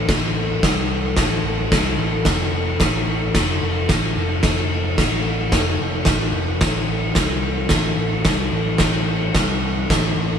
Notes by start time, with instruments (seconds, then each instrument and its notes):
0.09 picked electric bass A1, kick, snare, crash
0.63 picked electric bass C2, kick, snare, crash
1.17 picked electric bass A1, kick, snare, crash
1.45 picked electric bass A1
1.71 picked electric bass C2, kick, snare, crash
1.98 picked electric bass A1
2.25 picked electric bass F1, kick, snare, crash
2.80 picked electric bass A1, kick, snare, crash
3.35 picked electric bass F1, kick, snare, crash
3.62 picked electric bass F1
3.89 picked electric bass A1, kick, snare, crash
4.17 picked electric bass F1
4.43 picked electric bass F1, kick, snare, crash
4.98 picked electric bass A1, kick, snare, crash
5.52 picked electric bass F1, kick, snare, crash
5.79 picked electric bass F1
6.05 picked electric bass A1, kick, snare, crash
6.32 picked electric bass F1
6.61 picked electric bass A1, kick, snare, crash
7.15 picked electric bass C2, kick, snare, crash
7.69 picked electric bass A1, kick, snare, crash
7.96 picked electric bass A1
8.25 picked electric bass C2, kick, snare, crash
8.52 picked electric bass A1
8.78 picked electric bass A1, kick, snare, crash
9.35 picked electric bass C2, kick, snare, crash
9.90 picked electric bass A1, kick, snare, crash
10.16 picked electric bass A1